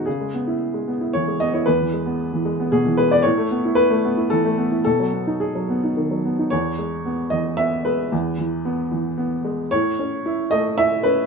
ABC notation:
X:1
M:3/4
L:1/16
Q:1/4=112
K:E
V:1 name="Upright piano"
G8 c2 d c | B8 G2 B =d | c4 B4 A4 | A4 G6 z2 |
c6 d2 e2 B2- | B8- B2 z2 | c6 d2 e2 B2 |]
V:2 name="Upright piano"
C, G, B, E2 G, B, E E, G, B, E | E,, E, G, B,2 E, G, B, B,, E, G, B, | A,, A, B, E2 A, B, E E, A, B, E | B,, F, B, D2 F, B, D D, F, B, D |
E,,2 G,2 B,2 E,2 B,2 G,2 | E,,2 E,2 B,2 E,2 B,2 G,2 | A,,2 C2 E2 A,2 E2 C2 |]